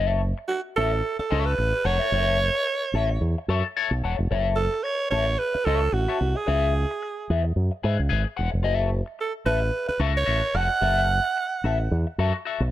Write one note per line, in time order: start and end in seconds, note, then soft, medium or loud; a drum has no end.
0.00 0.32 F#1 medium
0.00 0.21 A4 medium
0.00 0.21 C#5 medium
0.00 0.21 E5 medium
0.38 muted clean electric guitar stroke soft
0.48 0.61 F#4 medium
0.48 muted clean electric guitar stroke soft
0.76 1.01 A1 medium
0.76 1.16 A4 loud
0.76 0.90 A4 medium
0.76 0.91 C#5 medium
0.76 0.91 E5 medium
0.93 muted clean electric guitar stroke soft
1.19 1.47 A4 medium
1.19 muted fingered electric bass stroke soft
1.19 muted clean electric guitar stroke medium
1.30 1.55 C#2 medium
1.30 1.52 A4 loud
1.30 1.45 C#5 loud
1.30 1.45 E5 loud
1.46 1.88 B4 loud
1.46 muted clean electric guitar stroke soft
1.58 1.71 A1 medium
1.58 muted clean electric guitar stroke soft
1.73 muted clean electric guitar stroke soft
1.84 1.98 F1 medium
1.84 1.99 A4 medium
1.84 1.99 C#5 medium
1.84 3.49 C#5 loud
1.84 1.99 F#5 medium
1.99 2.12 A4 soft
1.99 2.11 C#5 medium
1.99 2.11 E5 medium
2.12 2.49 F#1 medium
2.12 2.38 A4 medium
2.12 2.38 C#5 medium
2.12 2.38 E5 medium
2.55 muted clean electric guitar stroke soft
2.67 muted clean electric guitar stroke soft
2.93 3.17 A1 medium
2.93 3.08 A4 medium
2.93 3.08 C#5 medium
2.93 3.09 E5 medium
3.11 muted clean electric guitar stroke medium
3.21 3.34 E2 medium
3.38 muted clean electric guitar stroke soft
3.48 3.61 F#2 medium
3.48 3.66 A4 medium
3.48 3.64 C#5 medium
3.48 3.64 E5 medium
3.65 muted clean electric guitar stroke medium
3.77 3.93 A4 medium
3.77 3.91 C#5 medium
3.77 3.90 E5 loud
3.91 4.01 B1 medium
3.91 muted clean electric guitar stroke soft
4.03 4.16 E1 medium
4.03 4.17 A4 medium
4.03 4.17 C#5 medium
4.03 4.18 F#5 medium
4.18 4.29 F1 loud
4.18 muted clean electric guitar stroke soft
4.31 4.67 F#1 loud
4.31 4.56 A4 medium
4.31 4.56 C#5 medium
4.31 4.56 E5 medium
4.56 4.84 A4 loud
4.74 muted clean electric guitar stroke soft
4.83 5.10 C#5 loud
4.83 muted clean electric guitar stroke soft
5.11 5.35 A1 loud
5.11 5.25 A4 medium
5.11 5.40 C#5 loud
5.11 5.26 C#5 medium
5.11 5.26 E5 medium
5.27 muted clean electric guitar stroke soft
5.38 5.67 B4 loud
5.54 muted clean electric guitar stroke soft
5.54 muted fingered electric bass stroke soft
5.65 5.89 C#2 medium
5.65 5.95 A4 loud
5.65 5.87 A4 medium
5.65 5.81 C#5 medium
5.65 5.80 E5 loud
5.81 muted clean electric guitar stroke soft
5.92 6.06 A1 medium
5.92 6.38 F#4 medium
5.92 muted clean electric guitar stroke soft
6.08 6.18 A4 medium
6.08 6.19 C#5 medium
6.08 6.19 E5 medium
6.20 6.34 C2 medium
6.20 muted clean electric guitar stroke soft
6.35 7.45 G#4 medium
6.35 muted clean electric guitar stroke soft
6.46 6.84 C#2 loud
6.46 6.72 G#4 medium
6.46 6.72 B4 medium
6.46 6.73 E5 medium
6.91 muted clean electric guitar stroke soft
7.02 muted clean electric guitar stroke soft
7.30 7.53 E2 medium
7.30 7.43 G#4 medium
7.30 7.43 B4 medium
7.30 7.43 E5 medium
7.44 muted clean electric guitar stroke soft
7.56 7.69 F#2 loud
7.71 muted clean electric guitar stroke soft
7.83 7.97 G#2 medium
7.83 8.00 G#4 loud
7.83 7.98 B4 medium
7.83 7.97 E5 loud
7.99 8.09 C#2 medium
7.99 muted clean electric guitar stroke soft
8.09 8.24 G#1 medium
8.09 8.27 G#4 medium
8.09 8.24 B4 medium
8.09 8.23 E5 medium
8.24 muted clean electric guitar stroke soft
8.36 8.51 E1 medium
8.36 8.51 G#4 medium
8.36 8.51 B4 medium
8.36 8.51 F#5 medium
8.52 8.64 F1 medium
8.52 muted clean electric guitar stroke soft
8.63 9.01 F#1 loud
8.63 8.74 F4 medium
8.63 8.75 G#4 medium
8.63 8.75 D#5 loud
8.74 8.89 F#4 medium
8.74 8.89 A4 medium
8.74 8.90 E5 loud
9.06 muted clean electric guitar stroke soft
9.19 9.33 A4 medium
9.19 muted clean electric guitar stroke soft
9.45 9.70 A1 medium
9.45 9.60 F#4 medium
9.45 9.60 A4 medium
9.45 9.85 B4 loud
9.45 9.60 E5 medium
9.61 muted clean electric guitar stroke soft
9.88 10.01 B4 medium
9.88 muted clean electric guitar stroke soft
9.88 muted fingered electric bass stroke soft
9.99 10.23 C#2 medium
9.99 10.17 F#4 loud
9.99 10.14 A4 loud
9.99 10.13 E5 loud
10.15 10.58 C#5 loud
10.15 muted clean electric guitar stroke soft
10.26 10.41 A1 medium
10.26 10.44 F#4 medium
10.26 10.42 A4 medium
10.26 10.41 E5 medium
10.43 muted clean electric guitar stroke soft
10.54 10.68 F1 medium
10.54 10.68 F#4 medium
10.54 10.69 A4 medium
10.54 10.69 F#5 medium
10.54 12.19 F#5 loud
10.69 muted clean electric guitar stroke soft
10.81 11.18 F#1 loud
10.81 11.07 F#4 medium
10.81 11.07 A4 medium
10.81 11.07 E5 medium
11.24 muted clean electric guitar stroke soft
11.37 muted clean electric guitar stroke soft
11.64 11.87 A1 medium
11.64 11.78 F#4 medium
11.64 11.78 A4 medium
11.64 11.79 E5 medium
11.80 muted clean electric guitar stroke medium
11.91 12.04 E2 loud
12.07 muted clean electric guitar stroke soft
12.18 12.31 F#2 medium
12.18 12.36 F#4 loud
12.18 12.34 A4 loud
12.18 12.33 E5 loud
12.34 muted clean electric guitar stroke medium
12.45 12.62 F#4 medium
12.45 12.61 A4 medium
12.45 12.60 E5 medium
12.60 12.71 B1 medium
12.60 muted clean electric guitar stroke soft